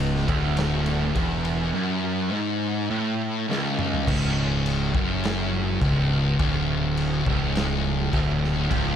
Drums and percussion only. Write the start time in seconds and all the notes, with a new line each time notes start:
0.16 snare
0.28 kick, ride
0.57 snare, ride
0.86 ride
1.15 kick, ride
1.45 ride
3.51 snare
3.79 mid tom
3.94 floor tom
4.07 kick, crash
4.66 crash
4.95 kick
5.24 snare, crash
5.82 kick, crash
6.39 kick, crash
6.97 crash
7.26 kick
7.55 snare, crash
8.13 kick, crash
8.44 snare
8.71 kick, crash